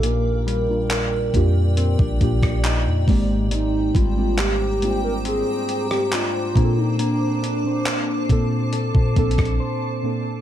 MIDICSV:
0, 0, Header, 1, 7, 480
1, 0, Start_track
1, 0, Key_signature, -2, "major"
1, 0, Tempo, 869565
1, 19, Time_signature, 4, 2, 24, 8
1, 5747, End_track
2, 0, Start_track
2, 0, Title_t, "Ambient pad"
2, 0, Program_c, 0, 92
2, 0, Note_on_c, 0, 74, 83
2, 0, Note_on_c, 0, 79, 74
2, 1680, Note_off_c, 0, 74, 0
2, 1680, Note_off_c, 0, 79, 0
2, 1698, Note_on_c, 0, 72, 79
2, 1699, Note_on_c, 0, 79, 73
2, 1699, Note_on_c, 0, 82, 73
2, 1700, Note_on_c, 0, 86, 88
2, 3600, Note_off_c, 0, 79, 0
2, 3600, Note_off_c, 0, 82, 0
2, 3619, Note_on_c, 0, 81, 72
2, 5747, Note_off_c, 0, 72, 0
2, 5747, Note_off_c, 0, 81, 0
2, 5747, Note_off_c, 0, 86, 0
2, 5747, End_track
3, 0, Start_track
3, 0, Title_t, "Soft synth lead"
3, 0, Program_c, 1, 80
3, 25, Note_on_c, 1, 70, 99
3, 1462, Note_off_c, 1, 70, 0
3, 1947, Note_on_c, 1, 63, 100
3, 2185, Note_on_c, 1, 65, 100
3, 2193, Note_off_c, 1, 63, 0
3, 2422, Note_off_c, 1, 65, 0
3, 2426, Note_on_c, 1, 67, 109
3, 2760, Note_off_c, 1, 67, 0
3, 2783, Note_on_c, 1, 70, 108
3, 2836, Note_off_c, 1, 70, 0
3, 2905, Note_on_c, 1, 68, 101
3, 3240, Note_off_c, 1, 68, 0
3, 3264, Note_on_c, 1, 67, 99
3, 3383, Note_on_c, 1, 65, 106
3, 3391, Note_off_c, 1, 67, 0
3, 3743, Note_on_c, 1, 63, 92
3, 3751, Note_off_c, 1, 65, 0
3, 3865, Note_on_c, 1, 62, 91
3, 3873, Note_off_c, 1, 63, 0
3, 4822, Note_off_c, 1, 62, 0
3, 5747, End_track
4, 0, Start_track
4, 0, Title_t, "Clean electric guitar"
4, 0, Program_c, 2, 27
4, 0, Note_on_c, 2, 58, 68
4, 0, Note_on_c, 2, 63, 71
4, 18, Note_on_c, 2, 46, 90
4, 258, Note_on_c, 2, 55, 60
4, 977, Note_off_c, 2, 58, 0
4, 979, Note_on_c, 2, 60, 68
4, 1100, Note_off_c, 2, 60, 0
4, 1100, Note_on_c, 2, 62, 56
4, 1117, Note_off_c, 2, 63, 0
4, 1460, Note_on_c, 2, 63, 70
4, 1697, Note_off_c, 2, 46, 0
4, 1699, Note_on_c, 2, 44, 85
4, 1747, Note_off_c, 2, 62, 0
4, 1933, Note_off_c, 2, 44, 0
4, 1939, Note_on_c, 2, 44, 84
4, 1956, Note_off_c, 2, 55, 0
4, 2178, Note_on_c, 2, 55, 56
4, 2900, Note_on_c, 2, 60, 68
4, 3378, Note_off_c, 2, 63, 0
4, 3380, Note_on_c, 2, 62, 67
4, 3618, Note_off_c, 2, 55, 0
4, 3621, Note_on_c, 2, 58, 90
4, 3667, Note_off_c, 2, 44, 0
4, 3857, Note_off_c, 2, 58, 0
4, 3860, Note_on_c, 2, 58, 92
4, 3876, Note_off_c, 2, 60, 0
4, 4100, Note_off_c, 2, 62, 0
4, 4100, Note_on_c, 2, 62, 63
4, 4819, Note_on_c, 2, 69, 68
4, 5299, Note_on_c, 2, 72, 70
4, 5747, Note_off_c, 2, 58, 0
4, 5747, Note_off_c, 2, 62, 0
4, 5747, Note_off_c, 2, 69, 0
4, 5747, Note_off_c, 2, 72, 0
4, 5747, End_track
5, 0, Start_track
5, 0, Title_t, "Synth keys"
5, 0, Program_c, 3, 88
5, 0, Control_c, 3, 64, 127
5, 0, Note_on_c, 3, 46, 80
5, 0, Note_on_c, 3, 58, 69
5, 0, Note_on_c, 3, 62, 71
5, 0, Note_on_c, 3, 65, 73
5, 0, Note_on_c, 3, 67, 90
5, 257, Note_off_c, 3, 46, 0
5, 259, Note_off_c, 3, 58, 0
5, 262, Note_off_c, 3, 62, 0
5, 264, Note_off_c, 3, 65, 0
5, 265, Note_off_c, 3, 67, 0
5, 375, Note_on_c, 3, 46, 68
5, 380, Note_on_c, 3, 58, 65
5, 384, Note_on_c, 3, 62, 64
5, 388, Note_on_c, 3, 65, 64
5, 393, Note_on_c, 3, 70, 81
5, 626, Note_off_c, 3, 46, 0
5, 628, Note_off_c, 3, 58, 0
5, 630, Note_off_c, 3, 62, 0
5, 632, Note_off_c, 3, 65, 0
5, 634, Note_off_c, 3, 70, 0
5, 736, Note_on_c, 3, 46, 87
5, 741, Note_on_c, 3, 58, 85
5, 745, Note_on_c, 3, 62, 83
5, 750, Note_on_c, 3, 65, 83
5, 754, Note_on_c, 3, 67, 103
5, 1069, Note_off_c, 3, 46, 0
5, 1071, Note_off_c, 3, 58, 0
5, 1073, Note_off_c, 3, 62, 0
5, 1076, Note_off_c, 3, 65, 0
5, 1078, Note_off_c, 3, 67, 0
5, 1216, Note_on_c, 3, 46, 91
5, 1220, Note_on_c, 3, 58, 82
5, 1224, Note_on_c, 3, 62, 85
5, 1229, Note_on_c, 3, 65, 84
5, 1232, Note_on_c, 3, 67, 100
5, 1549, Note_off_c, 3, 46, 0
5, 1551, Note_off_c, 3, 58, 0
5, 1553, Note_off_c, 3, 62, 0
5, 1555, Note_off_c, 3, 65, 0
5, 1557, Note_off_c, 3, 67, 0
5, 1696, Note_on_c, 3, 44, 92
5, 1699, Note_on_c, 3, 56, 91
5, 1703, Note_on_c, 3, 58, 84
5, 1706, Control_c, 3, 64, 0
5, 1706, Note_on_c, 3, 60, 87
5, 1709, Note_on_c, 3, 74, 87
5, 1713, Note_on_c, 3, 67, 102
5, 1801, Control_c, 3, 64, 127
5, 2177, Note_off_c, 3, 44, 0
5, 2179, Note_off_c, 3, 56, 0
5, 2181, Note_off_c, 3, 58, 0
5, 2182, Note_off_c, 3, 60, 0
5, 2184, Note_off_c, 3, 74, 0
5, 2186, Note_off_c, 3, 67, 0
5, 2296, Note_on_c, 3, 44, 71
5, 2300, Note_on_c, 3, 56, 65
5, 2303, Note_on_c, 3, 58, 65
5, 2307, Note_on_c, 3, 60, 64
5, 2309, Note_on_c, 3, 62, 63
5, 2313, Note_on_c, 3, 67, 78
5, 2546, Note_off_c, 3, 44, 0
5, 2548, Note_off_c, 3, 56, 0
5, 2550, Note_off_c, 3, 58, 0
5, 2551, Note_off_c, 3, 60, 0
5, 2553, Note_off_c, 3, 62, 0
5, 2554, Note_off_c, 3, 67, 0
5, 2656, Note_on_c, 3, 44, 80
5, 2659, Note_on_c, 3, 56, 70
5, 2663, Note_on_c, 3, 58, 73
5, 2666, Note_on_c, 3, 60, 69
5, 2669, Note_on_c, 3, 62, 71
5, 2673, Note_on_c, 3, 65, 70
5, 2702, Note_off_c, 3, 65, 0
5, 2708, Note_on_c, 3, 79, 81
5, 3320, Note_off_c, 3, 44, 0
5, 3322, Note_off_c, 3, 56, 0
5, 3324, Note_off_c, 3, 58, 0
5, 3325, Note_off_c, 3, 60, 0
5, 3327, Note_off_c, 3, 62, 0
5, 3346, Note_off_c, 3, 79, 0
5, 3616, Note_on_c, 3, 46, 84
5, 3620, Note_on_c, 3, 58, 71
5, 3624, Note_on_c, 3, 60, 72
5, 3625, Control_c, 3, 64, 0
5, 3628, Note_on_c, 3, 62, 75
5, 3632, Note_on_c, 3, 68, 71
5, 3661, Note_off_c, 3, 68, 0
5, 3668, Note_on_c, 3, 69, 85
5, 3734, Control_c, 3, 64, 127
5, 4097, Note_off_c, 3, 46, 0
5, 4100, Note_off_c, 3, 58, 0
5, 4101, Note_off_c, 3, 60, 0
5, 4103, Note_off_c, 3, 62, 0
5, 4123, Note_off_c, 3, 69, 0
5, 4216, Note_on_c, 3, 46, 70
5, 4220, Note_on_c, 3, 58, 61
5, 4225, Note_on_c, 3, 60, 64
5, 4229, Note_on_c, 3, 62, 64
5, 4233, Note_on_c, 3, 72, 78
5, 4466, Note_off_c, 3, 46, 0
5, 4468, Note_off_c, 3, 58, 0
5, 4470, Note_off_c, 3, 60, 0
5, 4472, Note_off_c, 3, 62, 0
5, 4474, Note_off_c, 3, 72, 0
5, 4576, Note_on_c, 3, 46, 88
5, 4580, Note_on_c, 3, 58, 83
5, 4584, Note_on_c, 3, 60, 85
5, 4588, Note_on_c, 3, 62, 84
5, 4593, Note_on_c, 3, 69, 94
5, 4909, Note_off_c, 3, 46, 0
5, 4911, Note_off_c, 3, 58, 0
5, 4913, Note_off_c, 3, 60, 0
5, 4915, Note_off_c, 3, 62, 0
5, 4917, Note_off_c, 3, 69, 0
5, 5056, Note_on_c, 3, 46, 95
5, 5060, Note_on_c, 3, 58, 78
5, 5064, Note_on_c, 3, 60, 83
5, 5068, Note_on_c, 3, 62, 85
5, 5073, Note_on_c, 3, 69, 103
5, 5389, Note_off_c, 3, 46, 0
5, 5391, Note_off_c, 3, 58, 0
5, 5393, Note_off_c, 3, 60, 0
5, 5395, Note_off_c, 3, 62, 0
5, 5397, Note_off_c, 3, 69, 0
5, 5535, Note_on_c, 3, 46, 76
5, 5539, Note_on_c, 3, 58, 70
5, 5544, Note_on_c, 3, 60, 72
5, 5548, Note_on_c, 3, 62, 74
5, 5552, Note_on_c, 3, 69, 89
5, 5703, Note_off_c, 3, 46, 0
5, 5705, Note_off_c, 3, 58, 0
5, 5707, Note_off_c, 3, 60, 0
5, 5709, Note_off_c, 3, 62, 0
5, 5711, Note_off_c, 3, 69, 0
5, 5747, End_track
6, 0, Start_track
6, 0, Title_t, "808-style bass"
6, 0, Program_c, 4, 38
6, 0, Note_on_c, 4, 34, 102
6, 717, Note_off_c, 4, 34, 0
6, 740, Note_on_c, 4, 41, 111
6, 1085, Note_off_c, 4, 41, 0
6, 1100, Note_on_c, 4, 34, 108
6, 1215, Note_off_c, 4, 34, 0
6, 1220, Note_on_c, 4, 34, 105
6, 1335, Note_off_c, 4, 34, 0
6, 1341, Note_on_c, 4, 34, 104
6, 1582, Note_on_c, 4, 41, 105
6, 1590, Note_off_c, 4, 34, 0
6, 1694, Note_off_c, 4, 41, 0
6, 1700, Note_on_c, 4, 32, 103
6, 2160, Note_off_c, 4, 32, 0
6, 2181, Note_on_c, 4, 32, 102
6, 2998, Note_off_c, 4, 32, 0
6, 3621, Note_on_c, 4, 46, 102
6, 4558, Note_off_c, 4, 46, 0
6, 4580, Note_on_c, 4, 46, 106
6, 4925, Note_off_c, 4, 46, 0
6, 4939, Note_on_c, 4, 46, 101
6, 5054, Note_off_c, 4, 46, 0
6, 5060, Note_on_c, 4, 34, 109
6, 5175, Note_off_c, 4, 34, 0
6, 5180, Note_on_c, 4, 34, 107
6, 5295, Note_off_c, 4, 34, 0
6, 5747, End_track
7, 0, Start_track
7, 0, Title_t, "Drums"
7, 19, Note_on_c, 9, 42, 79
7, 74, Note_off_c, 9, 42, 0
7, 264, Note_on_c, 9, 42, 66
7, 319, Note_off_c, 9, 42, 0
7, 497, Note_on_c, 9, 42, 72
7, 501, Note_on_c, 9, 39, 115
7, 552, Note_off_c, 9, 42, 0
7, 556, Note_off_c, 9, 39, 0
7, 739, Note_on_c, 9, 36, 87
7, 742, Note_on_c, 9, 42, 62
7, 794, Note_off_c, 9, 36, 0
7, 797, Note_off_c, 9, 42, 0
7, 978, Note_on_c, 9, 42, 70
7, 1033, Note_off_c, 9, 42, 0
7, 1099, Note_on_c, 9, 36, 102
7, 1154, Note_off_c, 9, 36, 0
7, 1219, Note_on_c, 9, 36, 95
7, 1220, Note_on_c, 9, 42, 57
7, 1275, Note_off_c, 9, 36, 0
7, 1275, Note_off_c, 9, 42, 0
7, 1339, Note_on_c, 9, 36, 92
7, 1343, Note_on_c, 9, 37, 95
7, 1394, Note_off_c, 9, 36, 0
7, 1398, Note_off_c, 9, 37, 0
7, 1461, Note_on_c, 9, 39, 113
7, 1462, Note_on_c, 9, 42, 65
7, 1516, Note_off_c, 9, 39, 0
7, 1517, Note_off_c, 9, 42, 0
7, 1699, Note_on_c, 9, 36, 111
7, 1704, Note_on_c, 9, 46, 64
7, 1754, Note_off_c, 9, 36, 0
7, 1760, Note_off_c, 9, 46, 0
7, 1939, Note_on_c, 9, 42, 76
7, 1994, Note_off_c, 9, 42, 0
7, 2179, Note_on_c, 9, 36, 93
7, 2185, Note_on_c, 9, 42, 74
7, 2234, Note_off_c, 9, 36, 0
7, 2240, Note_off_c, 9, 42, 0
7, 2417, Note_on_c, 9, 42, 74
7, 2421, Note_on_c, 9, 39, 118
7, 2472, Note_off_c, 9, 42, 0
7, 2476, Note_off_c, 9, 39, 0
7, 2663, Note_on_c, 9, 42, 64
7, 2718, Note_off_c, 9, 42, 0
7, 2899, Note_on_c, 9, 42, 71
7, 2954, Note_off_c, 9, 42, 0
7, 3140, Note_on_c, 9, 42, 58
7, 3195, Note_off_c, 9, 42, 0
7, 3263, Note_on_c, 9, 37, 93
7, 3318, Note_off_c, 9, 37, 0
7, 3382, Note_on_c, 9, 39, 119
7, 3383, Note_on_c, 9, 42, 63
7, 3437, Note_off_c, 9, 39, 0
7, 3438, Note_off_c, 9, 42, 0
7, 3619, Note_on_c, 9, 36, 107
7, 3626, Note_on_c, 9, 42, 66
7, 3674, Note_off_c, 9, 36, 0
7, 3681, Note_off_c, 9, 42, 0
7, 3859, Note_on_c, 9, 42, 77
7, 3915, Note_off_c, 9, 42, 0
7, 4105, Note_on_c, 9, 42, 74
7, 4161, Note_off_c, 9, 42, 0
7, 4337, Note_on_c, 9, 42, 77
7, 4340, Note_on_c, 9, 39, 123
7, 4392, Note_off_c, 9, 42, 0
7, 4396, Note_off_c, 9, 39, 0
7, 4579, Note_on_c, 9, 36, 82
7, 4581, Note_on_c, 9, 42, 68
7, 4634, Note_off_c, 9, 36, 0
7, 4637, Note_off_c, 9, 42, 0
7, 4817, Note_on_c, 9, 42, 66
7, 4872, Note_off_c, 9, 42, 0
7, 4939, Note_on_c, 9, 36, 102
7, 4994, Note_off_c, 9, 36, 0
7, 5059, Note_on_c, 9, 36, 102
7, 5059, Note_on_c, 9, 42, 59
7, 5114, Note_off_c, 9, 36, 0
7, 5114, Note_off_c, 9, 42, 0
7, 5139, Note_on_c, 9, 42, 56
7, 5179, Note_on_c, 9, 36, 93
7, 5182, Note_on_c, 9, 37, 90
7, 5194, Note_off_c, 9, 42, 0
7, 5218, Note_on_c, 9, 42, 49
7, 5234, Note_off_c, 9, 36, 0
7, 5237, Note_off_c, 9, 37, 0
7, 5274, Note_off_c, 9, 42, 0
7, 5747, End_track
0, 0, End_of_file